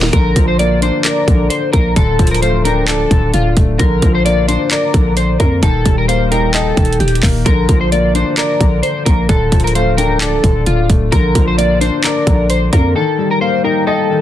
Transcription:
Already playing: D#1 D#3 G3 A#3 D#4 D#5
0.02 snare
0.13 A#1 D3 A#4, kick, closed hi-hat
0.36 A#1 F3, kick, closed hi-hat
0.48 C5
0.59 A#3 D5, closed hi-hat
0.82 D4 C5, closed hi-hat
1.05 A#4 D5, clap, closed hi-hat
1.28 A#1 D3, kick, closed hi-hat
1.50 C5, closed hi-hat
1.73 A#1 A#3 A#4, kick, closed hi-hat
1.96 D1 D3 A4, kick, closed hi-hat
2.19 D1 F3, kick, closed hi-hat
2.27 closed hi-hat
2.31 A#4, closed hi-hat
2.42 A3 C5 F5, closed hi-hat
2.65 D4 A#4 G5, closed hi-hat
2.87 A4 D5, clap, closed hi-hat
3.11 D1 D3, kick, closed hi-hat
3.34 D1 F4, closed hi-hat
3.57 D1 A3, kick, closed hi-hat
3.79 A#1 D3 A#4, kick, closed hi-hat
4.02 A#1 F3, kick, closed hi-hat
4.15 C5
4.25 A#3 D5, closed hi-hat
4.48 D4 C5, closed hi-hat
4.71 A#4 D5, clap, closed hi-hat
4.94 A#1 D3, kick, closed hi-hat
5.17 C5, closed hi-hat
5.40 F2 A#3 A#4, kick, closed hi-hat
5.62 D#1 D#3 A4, kick, closed hi-hat
5.85 D#1 G3, kick, closed hi-hat
5.98 A#4
6.08 A#3 C5 F5, closed hi-hat
6.31 D#4 A#4 G5, closed hi-hat
6.54 A4 D#5, clap, closed hi-hat
6.77 D#1 D#3, kick, closed hi-hat
6.85 closed hi-hat
6.93 closed hi-hat
7.00 D#1 G4, closed hi-hat
7.08 closed hi-hat
7.15 closed hi-hat
7.23 D#1 A#3, kick, clap, open hi-hat
7.46 A#1 D3 A#4, kick, closed hi-hat
7.69 A#1 F3, kick, closed hi-hat
7.81 C5
7.92 A#3 D5, closed hi-hat
8.15 D4 C5, closed hi-hat
8.37 A#4 D5, clap, closed hi-hat
8.61 A#1 D3, kick, closed hi-hat
8.83 C5, closed hi-hat
9.05 A#1 A#3 A#4, kick, closed hi-hat
9.29 D1 D3 A4, kick, closed hi-hat
9.52 D1 F3, kick, closed hi-hat
9.60 closed hi-hat
9.64 A#4, closed hi-hat
9.75 A3 C5 F5, closed hi-hat
9.97 D4 A#4 G5, closed hi-hat
10.20 A4 D5, clap, closed hi-hat
10.44 D1 D3, kick, closed hi-hat
10.66 D1 F4, closed hi-hat
10.90 D1 A3, kick, closed hi-hat
11.12 A#1 D3 A#4, kick, closed hi-hat
11.35 A#1 F3, kick, closed hi-hat
11.48 C5
11.58 A#3 D5, closed hi-hat
11.81 D4 C5, closed hi-hat
12.04 A#4 D5, clap, closed hi-hat
12.27 A#1 D3, kick, closed hi-hat
12.50 C5, closed hi-hat
12.73 F2 A#3 A#4, kick, closed hi-hat
12.95 D#3 A4
13.18 G3
13.31 A#4
13.41 A#3 C5 F5
13.64 D#4 A#4 G5
13.87 A4 D#5
14.10 D#3

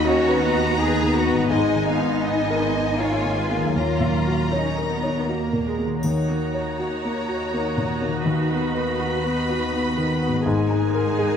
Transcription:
Already playing: D#2 D#3 B3 D#4 D#5
0.05 C#4 F#4 C#5 D#5 A#5
0.29 B4
0.41 B3 B4
0.53 D#5
0.77 B3 D#4 G#4
1.02 D#3
1.16 F#4
1.26 B3
1.34 G#2
1.39 G#3
1.43 D#4
1.48 G#1 G#2 G#3 D#5 G#5
1.52 D#4
1.75 D#3
1.87 B3 F5
2.00 D#4
2.24 D#5 G#5
2.50 A#4
2.74 D#5
2.99 A#3 D#4 F4 C#5
3.24 D#3
3.37 G#3 B4
3.51 A#3
3.56 D#3
3.61 A#3
3.66 F#3
3.70 C#5
3.74 D#2 A#3 F4 A#4 A#5
4.00 A#2
4.27 F#4
4.51 C#4 D#4 C#5
4.78 A#4
4.89 B3
5.03 C#5
5.26 A#3 F#4
5.53 A#2
5.64 G#3
5.79 A#3
5.85 D#3
5.90 A#3
5.94 F#4
5.99 D#2 D#4 F#4 C#5
6.03 D#2 C#5 A#5, triangle
6.29 A#3
6.54 C#5
6.79 F#4
7.05 A#3
7.29 F#4
7.54 A#3
7.77 A#2
8.02 A#3
8.08 D#3
8.12 B3
8.17 F#4
8.21 B4 B5
8.26 D#2
8.51 B3
8.75 B4
9.00 F#4
9.24 B3
9.50 F#4
9.73 B3
9.97 D#3
10.23 B3
10.27 G#2
10.32 A#3
10.36 D#4
10.41 G#1 D#4 G#4
10.45 G#2 A#4 G#5
10.70 D#4
10.95 A#4
11.19 G#4

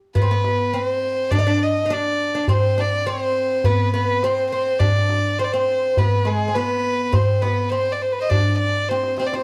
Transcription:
0.15 B3 B4, darbuka dum
0.22 C4
0.31 B3
0.44 darbuka tek
0.73 C4 B4
0.86 C5
1.02 darbuka ka
1.31 D4 D5, darbuka dum
1.39 D#4
1.47 D4
1.63 D#5
1.86 D#4
1.90 D4 D5, darbuka tek
2.20 darbuka ka
2.35 D4
2.48 C4 C5, darbuka dum
2.77 D4 D5, darbuka tek
3.07 C4 C5
3.36 darbuka ka
3.64 B3 B4, darbuka dum
3.94 B3 B4, darbuka ka
4.23 C4 C5, darbuka tek
4.51 C4 C5, darbuka ka
4.79 D4 D5, darbuka dum
5.10 darbuka tek
5.39 C4 C5
5.44 D5
5.53 C4 C5
5.68 darbuka ka
5.97 B3 B4, darbuka dum
6.25 G#3 G#4, darbuka ka
6.48 C4
6.55 B3 B4, darbuka tek
7.12 C4 C5, darbuka dum
7.42 B3 B4, darbuka tek
7.70 C4 C5
7.92 D5
8.01 C5, darbuka ka
8.12 B4
8.20 C5 D#5
8.29 D4 D5, darbuka dum
8.46 darbuka ka
8.58 D5
8.89 C4 C5, darbuka tek
9.03 darbuka ka
9.18 C4 C5, darbuka tek
9.27 D5
9.33 C4 C5, darbuka ka

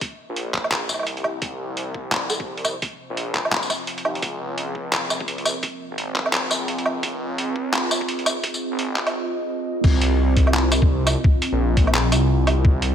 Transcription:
Already playing: C4 F4 A#4 D#5
0.01 kick, closed hi-hat
0.29 A#1
0.36 closed hi-hat
0.54 kick, clap
0.64 low woodblock
0.72 clap, closed hi-hat
0.89 C2, tambourine, low woodblock
0.94 low woodblock
0.99 low woodblock
1.03 closed hi-hat, low woodblock
1.17 closed hi-hat
1.24 low woodblock
1.35 C2
1.42 C2, kick, closed hi-hat
1.73 C5
1.77 closed hi-hat
1.95 kick
2.12 clap, closed hi-hat
2.30 F5, tambourine, low woodblock
2.40 kick
2.58 closed hi-hat
2.65 tambourine, low woodblock
2.82 kick, closed hi-hat
3.10 A#1
3.17 closed hi-hat
3.35 kick, clap
3.45 low woodblock
3.52 clap
3.63 tambourine
3.70 tambourine, low woodblock
3.87 closed hi-hat
3.98 closed hi-hat
4.05 D#2, low woodblock
4.15 closed hi-hat
4.22 C#2, kick, closed hi-hat
4.40 A#4
4.58 closed hi-hat
4.75 kick
4.80 D#5
4.93 clap, closed hi-hat
5.10 tambourine, low woodblock
5.20 kick
5.28 closed hi-hat
5.38 closed hi-hat
5.45 tambourine, low woodblock
5.63 kick, closed hi-hat
5.91 G#1
5.98 closed hi-hat
6.15 kick, clap
6.26 low woodblock
6.33 clap, closed hi-hat
6.51 C#2, tambourine, low woodblock
6.68 closed hi-hat
6.78 closed hi-hat
6.86 low woodblock
6.96 C#2
7.03 C#2, kick, closed hi-hat
7.38 G#4, closed hi-hat
7.56 kick
7.73 clap, closed hi-hat
7.91 tambourine, low woodblock
8.01 kick
8.09 closed hi-hat
8.19 closed hi-hat
8.26 tambourine, low woodblock
8.43 kick, closed hi-hat
8.54 tambourine
8.72 G#1
8.79 closed hi-hat
8.96 kick, clap
9.07 closed hi-hat, low woodblock
9.84 C2, kick, crash
10.02 closed hi-hat
10.37 kick, closed hi-hat
10.47 low woodblock
10.54 clap
10.63 A#4
10.72 closed hi-hat, tambourine, low woodblock
10.82 kick
11.07 closed hi-hat, tambourine, low woodblock
11.24 kick
11.42 closed hi-hat
11.52 A#1
11.77 kick, closed hi-hat
11.87 low woodblock
11.94 clap
12.12 C2, closed hi-hat, tambourine, low woodblock
12.47 closed hi-hat, low woodblock
12.57 C2
12.65 C2, kick
12.82 closed hi-hat

